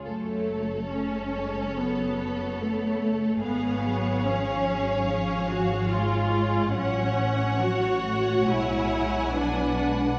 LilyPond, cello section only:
\new Staff \with { instrumentName = "Cello section" } { \clef bass \time 4/4 \key fis \minor \tempo 4 = 71 fis4 a8 gis8 fis4 b8 a8 | gis8 fis8 eis8 fis8 eis4 gis4 | fis8 e8 fis8 a8 gis4 fis8 gis8 | }